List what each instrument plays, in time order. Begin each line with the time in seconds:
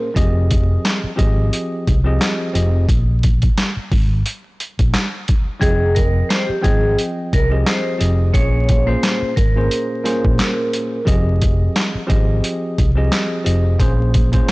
Already playing: vibraphone A#4
0.14 fingered electric bass F1, tine electric piano F3 C4 G4 G#4 D#5, kick, closed hi-hat
0.51 kick, closed hi-hat
0.85 snare, clap, closed hi-hat
1.04 muted fingered electric bass stroke
1.16 fingered electric bass G#1, tine electric piano F3 C4 G4 G#4 D#5, kick, closed hi-hat
1.53 closed hi-hat
1.87 fingered electric bass C2, kick, closed hi-hat
2.04 tine electric piano F3 C4 G4 G#4 D#5
2.21 snare, clap, closed hi-hat
2.53 fingered electric bass F1, tine electric piano F3 C4 G4 G#4 D#5, closed hi-hat
2.89 fingered electric bass A#1, kick, closed hi-hat
3.23 kick, closed hi-hat
3.42 kick, closed hi-hat
3.58 snare, clap, closed hi-hat
3.77 muted fingered electric bass stroke
3.92 fingered electric bass G#1, kick, open hi-hat
4.26 closed hi-hat
4.60 closed hi-hat
4.79 fingered electric bass A#1, kick, closed hi-hat
4.94 snare, clap, closed hi-hat
5.28 kick, closed hi-hat
5.59 fingered electric bass F1, tine electric piano F3 C4 G#4 D#5 G5, vibraphone G#4, kick, closed hi-hat
5.95 vibraphone A#4, kick, closed hi-hat
6.29 vibraphone C5, snare, clap, closed hi-hat
6.46 vibraphone G4, muted fingered electric bass stroke
6.61 fingered electric bass G#1, tine electric piano F3 C4 G#4 D#5 G5, vibraphone G#4, kick, closed hi-hat
6.99 closed hi-hat
7.33 fingered electric bass C2, vibraphone A#4, kick, closed hi-hat
7.50 tine electric piano F3 C4 G4 G#4 D#5
7.66 vibraphone C5, snare, clap, closed hi-hat
7.98 fingered electric bass F1, tine electric piano F3 C4 G4 G#4 D#5, closed hi-hat
8.33 fingered electric bass A#1, tine electric piano A#2 A#3 C#4 G#4 C#5, vibraphone C#5, kick, closed hi-hat
8.69 kick, closed hi-hat
8.86 tine electric piano A#2 A#3 C#4 G#4 C5, vibraphone C5
9.03 snare, clap, closed hi-hat
9.22 muted fingered electric bass stroke
9.36 fingered electric bass G#1, vibraphone A#4, kick, closed hi-hat
9.55 tine electric piano A#2 A#3 C#4 G#4 C5
9.71 closed hi-hat
10.04 tine electric piano A#2 A#3 C#4 G#4 C5, snare, closed hi-hat
10.25 fingered electric bass A#1, kick
10.39 snare, clap, closed hi-hat
10.73 closed hi-hat
11.05 fingered electric bass F1, tine electric piano F3 C4 G4 G#4 D#5, kick, closed hi-hat
11.42 kick, closed hi-hat
11.76 snare, clap, closed hi-hat
11.95 muted fingered electric bass stroke
12.07 fingered electric bass G#1, tine electric piano F3 C4 G4 G#4 D#5, kick, closed hi-hat
12.44 closed hi-hat
12.78 fingered electric bass C2, kick, closed hi-hat
12.95 tine electric piano F3 C4 G4 G#4 D#5
13.12 snare, clap, closed hi-hat
13.44 fingered electric bass F1, tine electric piano F3 C4 G4 G#4 D#5, closed hi-hat
13.78 fingered electric bass A#1, tine electric piano A#2 A#3 C#4 G#4 C5, kick, closed hi-hat
14.14 kick, closed hi-hat
14.31 tine electric piano A#2 A#3 C#4 G#4 C5, kick, closed hi-hat
14.48 snare, closed hi-hat